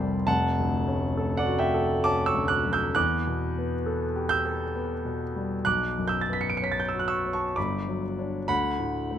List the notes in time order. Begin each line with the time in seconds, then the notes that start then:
Already playing: F1 C2 C4 F4 G4 G5 A5 B5 C6
0.00 G3
0.27 F1 F#5 A5
0.59 D2
0.88 C#4
1.17 A4
1.37 D5 F#5
1.46 F#4
1.59 E5 G5
1.74 A4
2.04 C#4 A5 D6
2.26 C#6 E6
2.34 D2
2.48 D6 F#6
2.65 F#3
2.73 E6 G6
2.95 E2 D6 F#6
3.27 B2
3.58 B3
3.86 A4
4.16 G4
4.29 E6 G6
4.45 A4
4.75 B3
5.05 B2
5.36 G3
5.65 B1 D6 F#6
5.98 F#2
6.08 E6 G6
6.21 A6
6.29 B3 B6
6.41 C#7
6.50 D7
6.57 C#7
6.62 C#5 B6
6.72 A6
6.80 G6
6.89 E6
6.93 F#4
6.99 F#6
7.08 C#6 E6
7.26 C#5
7.33 A5 C#6
7.56 G1 B5 D6
7.88 F#3
8.19 D4 C#5
8.48 D2 F#5 B5
8.79 A2
9.11 A3